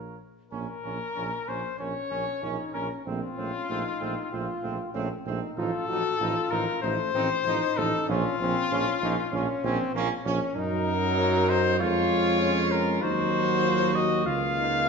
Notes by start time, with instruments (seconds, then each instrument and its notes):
Already playing: tuba A#1, trombone A#3, french horn F4, trumpet A#4, cornet C#5
0.51 tuba A#1, trombone A#3, trumpet C#4, cornet A#4
0.83 tuba A#1, trombone A#3, trumpet C#4
1.14 tuba A#1, trombone A#3, trumpet C#4
1.47 tuba A#1, trombone A#3, trumpet C#4, cornet C5
1.79 tuba A#1, trombone A#3, trumpet C#4, french horn C#4, cornet C#5
2.10 tuba A#1, trombone A#3, trumpet C#4
2.42 tuba A#1, trombone A#3, trumpet C#4, french horn D#4
2.73 tuba A#1, trombone A#3, trumpet C#4, french horn C#4, cornet A#4
3.05 tuba A#1, trombone A3, french horn C4, trumpet C4, cornet F4
3.37 tuba A#1, trombone A3, trumpet C4, french horn C#4
3.69 tuba A#1, trombone A3, trumpet C4, french horn D#4
4.00 tuba A#1, trombone A3, trumpet C4
4.32 tuba A#1, trombone A3, trumpet C4, french horn F4
4.63 tuba A#1, trombone A3, trumpet C4
4.94 tuba A#1, trombone A3, trumpet C4, french horn C#4
5.26 tuba A#1, trombone A3, trumpet C4, french horn D#4
5.57 tuba A1, trombone F3, trumpet D#4, french horn F4, cornet A4
5.88 tuba A1, trombone F3, trumpet D#4, french horn F#4
6.20 tuba A1, trombone F3, trumpet D#4, french horn F4
6.51 tuba A1, trombone F3, trumpet D#4, cornet A#4
6.82 tuba A1, trombone F3, french horn A3, trumpet D#4, cornet C5
7.14 tuba A1, trombone F3, french horn C4, trumpet D#4
7.45 tuba A1, trombone F3, french horn D#4, trumpet D#4
7.77 tuba A1, trombone F3, trumpet D#4, cornet A4
8.08 tuba A#1, trombone F3, french horn C#4, trumpet C#4, cornet F4
8.40 tuba A#1, trombone F3, french horn C4, trumpet C#4
8.71 tuba A#1, trombone F3, french horn C#4, trumpet C#4
9.01 tuba A#1, trombone F3, trumpet C#4, french horn D#4
9.32 tuba A#1, trombone F3, french horn C#4, trumpet C#4
9.64 tuba A#1, trombone F3, french horn C4, trumpet C#4
9.94 tuba A#1, trombone F3, french horn A#3, trumpet C#4
10.25 tuba A#1, trombone F3, french horn C#4, trumpet C#4
10.56 tuba F#2, trombone F#3, french horn D#4, trumpet D#4, cornet A#4
11.17 french horn C#4
11.48 french horn D#4, cornet C5
11.79 tuba F2, trombone G#3, french horn F4, trumpet F4, cornet C#5
12.42 french horn C#4
12.71 cornet A#4
13.02 tuba D#2, trombone F#3, french horn D#4, trumpet F#4, cornet C5
13.66 french horn F4
13.95 french horn F#4, cornet D#5
14.26 tuba C#2, trombone A#3, french horn F4, trumpet F4, cornet F5
14.57 french horn D#4